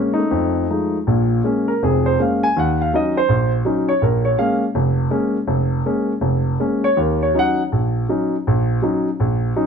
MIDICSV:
0, 0, Header, 1, 2, 480
1, 0, Start_track
1, 0, Key_signature, -5, "minor"
1, 0, Tempo, 376412
1, 1382, Time_signature, 4, 2, 24, 8
1, 2806, Tempo, 364520
1, 6646, Tempo, 370370
1, 12539, End_track
2, 0, Start_track
2, 0, Title_t, "Grand piano"
2, 0, Program_c, 0, 0
2, 0, Note_on_c, 0, 56, 42
2, 0, Note_on_c, 0, 58, 42
2, 0, Note_on_c, 0, 61, 47
2, 173, Note_on_c, 0, 63, 67
2, 235, Note_on_c, 0, 57, 44
2, 246, Note_off_c, 0, 56, 0
2, 249, Note_off_c, 0, 58, 0
2, 250, Note_off_c, 0, 61, 0
2, 394, Note_on_c, 0, 41, 61
2, 820, Note_off_c, 0, 41, 0
2, 880, Note_off_c, 0, 63, 0
2, 883, Note_off_c, 0, 57, 0
2, 891, Note_on_c, 0, 56, 39
2, 895, Note_on_c, 0, 53, 44
2, 899, Note_on_c, 0, 63, 48
2, 903, Note_on_c, 0, 57, 38
2, 1225, Note_off_c, 0, 56, 0
2, 1227, Note_off_c, 0, 53, 0
2, 1229, Note_off_c, 0, 63, 0
2, 1230, Note_off_c, 0, 57, 0
2, 1364, Note_on_c, 0, 34, 64
2, 1371, Note_on_c, 0, 46, 57
2, 1784, Note_off_c, 0, 34, 0
2, 1788, Note_off_c, 0, 46, 0
2, 1831, Note_on_c, 0, 56, 46
2, 1841, Note_on_c, 0, 58, 41
2, 1851, Note_on_c, 0, 61, 51
2, 2142, Note_on_c, 0, 70, 71
2, 2166, Note_off_c, 0, 56, 0
2, 2171, Note_off_c, 0, 58, 0
2, 2176, Note_off_c, 0, 61, 0
2, 2319, Note_off_c, 0, 70, 0
2, 2332, Note_on_c, 0, 29, 62
2, 2335, Note_on_c, 0, 41, 56
2, 2346, Note_on_c, 0, 68, 62
2, 2626, Note_on_c, 0, 72, 68
2, 2635, Note_off_c, 0, 68, 0
2, 2741, Note_off_c, 0, 29, 0
2, 2743, Note_off_c, 0, 41, 0
2, 2792, Note_on_c, 0, 56, 47
2, 2796, Note_off_c, 0, 72, 0
2, 2799, Note_on_c, 0, 61, 49
2, 2801, Note_on_c, 0, 58, 41
2, 2829, Note_on_c, 0, 77, 63
2, 3114, Note_on_c, 0, 80, 81
2, 3119, Note_off_c, 0, 77, 0
2, 3126, Note_off_c, 0, 56, 0
2, 3130, Note_off_c, 0, 61, 0
2, 3131, Note_off_c, 0, 58, 0
2, 3285, Note_off_c, 0, 80, 0
2, 3287, Note_on_c, 0, 39, 64
2, 3321, Note_on_c, 0, 78, 66
2, 3609, Note_off_c, 0, 78, 0
2, 3616, Note_on_c, 0, 77, 71
2, 3708, Note_off_c, 0, 39, 0
2, 3771, Note_on_c, 0, 54, 45
2, 3779, Note_off_c, 0, 77, 0
2, 3784, Note_on_c, 0, 63, 51
2, 3785, Note_on_c, 0, 61, 44
2, 3801, Note_on_c, 0, 75, 60
2, 4088, Note_on_c, 0, 72, 82
2, 4089, Note_off_c, 0, 75, 0
2, 4100, Note_off_c, 0, 54, 0
2, 4107, Note_off_c, 0, 61, 0
2, 4107, Note_off_c, 0, 63, 0
2, 4238, Note_on_c, 0, 34, 65
2, 4532, Note_off_c, 0, 72, 0
2, 4659, Note_off_c, 0, 34, 0
2, 4714, Note_on_c, 0, 54, 47
2, 4724, Note_on_c, 0, 61, 44
2, 4727, Note_on_c, 0, 63, 52
2, 5025, Note_on_c, 0, 73, 74
2, 5045, Note_off_c, 0, 54, 0
2, 5050, Note_off_c, 0, 61, 0
2, 5051, Note_off_c, 0, 63, 0
2, 5196, Note_off_c, 0, 73, 0
2, 5199, Note_on_c, 0, 34, 66
2, 5214, Note_on_c, 0, 70, 54
2, 5503, Note_on_c, 0, 73, 69
2, 5505, Note_off_c, 0, 70, 0
2, 5613, Note_off_c, 0, 34, 0
2, 5674, Note_off_c, 0, 73, 0
2, 5679, Note_on_c, 0, 56, 47
2, 5682, Note_on_c, 0, 58, 46
2, 5684, Note_on_c, 0, 77, 76
2, 5692, Note_on_c, 0, 61, 49
2, 5981, Note_off_c, 0, 77, 0
2, 6005, Note_off_c, 0, 56, 0
2, 6006, Note_off_c, 0, 58, 0
2, 6012, Note_off_c, 0, 61, 0
2, 6165, Note_on_c, 0, 29, 69
2, 6581, Note_off_c, 0, 29, 0
2, 6629, Note_on_c, 0, 56, 51
2, 6639, Note_on_c, 0, 58, 47
2, 6640, Note_on_c, 0, 61, 54
2, 6961, Note_off_c, 0, 56, 0
2, 6966, Note_off_c, 0, 58, 0
2, 6966, Note_off_c, 0, 61, 0
2, 7112, Note_on_c, 0, 29, 68
2, 7535, Note_off_c, 0, 29, 0
2, 7605, Note_on_c, 0, 56, 47
2, 7609, Note_on_c, 0, 58, 40
2, 7615, Note_on_c, 0, 61, 56
2, 7933, Note_off_c, 0, 56, 0
2, 7935, Note_off_c, 0, 58, 0
2, 7938, Note_off_c, 0, 61, 0
2, 8068, Note_on_c, 0, 29, 68
2, 8495, Note_off_c, 0, 29, 0
2, 8567, Note_on_c, 0, 56, 44
2, 8567, Note_on_c, 0, 58, 39
2, 8574, Note_on_c, 0, 61, 52
2, 8883, Note_on_c, 0, 73, 84
2, 8902, Note_off_c, 0, 58, 0
2, 8903, Note_off_c, 0, 56, 0
2, 8906, Note_off_c, 0, 61, 0
2, 9045, Note_on_c, 0, 39, 63
2, 9057, Note_off_c, 0, 73, 0
2, 9101, Note_on_c, 0, 70, 48
2, 9378, Note_on_c, 0, 73, 73
2, 9387, Note_off_c, 0, 70, 0
2, 9475, Note_off_c, 0, 39, 0
2, 9531, Note_on_c, 0, 54, 42
2, 9535, Note_on_c, 0, 61, 40
2, 9546, Note_on_c, 0, 63, 52
2, 9547, Note_off_c, 0, 73, 0
2, 9592, Note_on_c, 0, 78, 89
2, 9867, Note_off_c, 0, 54, 0
2, 9870, Note_off_c, 0, 61, 0
2, 9872, Note_off_c, 0, 78, 0
2, 9875, Note_off_c, 0, 63, 0
2, 10023, Note_on_c, 0, 34, 59
2, 10443, Note_off_c, 0, 34, 0
2, 10501, Note_on_c, 0, 54, 48
2, 10503, Note_on_c, 0, 61, 41
2, 10509, Note_on_c, 0, 63, 53
2, 10830, Note_off_c, 0, 54, 0
2, 10831, Note_off_c, 0, 61, 0
2, 10834, Note_off_c, 0, 63, 0
2, 10995, Note_on_c, 0, 34, 68
2, 11399, Note_off_c, 0, 34, 0
2, 11448, Note_on_c, 0, 54, 53
2, 11463, Note_on_c, 0, 61, 42
2, 11464, Note_on_c, 0, 63, 54
2, 11773, Note_off_c, 0, 54, 0
2, 11781, Note_off_c, 0, 61, 0
2, 11781, Note_off_c, 0, 63, 0
2, 11935, Note_on_c, 0, 34, 62
2, 12344, Note_off_c, 0, 34, 0
2, 12408, Note_on_c, 0, 54, 48
2, 12412, Note_on_c, 0, 63, 61
2, 12413, Note_on_c, 0, 61, 44
2, 12539, Note_off_c, 0, 54, 0
2, 12539, Note_off_c, 0, 61, 0
2, 12539, Note_off_c, 0, 63, 0
2, 12539, End_track
0, 0, End_of_file